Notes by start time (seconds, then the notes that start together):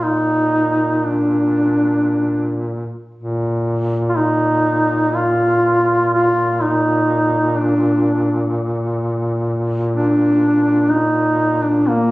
Already playing: A#2
0.03 D#4
1.05 D4
3.15 A#2
4.09 F4
4.16 D#4
5.16 F4
6.13 F4
6.62 D#4
7.58 D4
9.96 D4
10.90 D#4
11.63 D4
11.88 A#3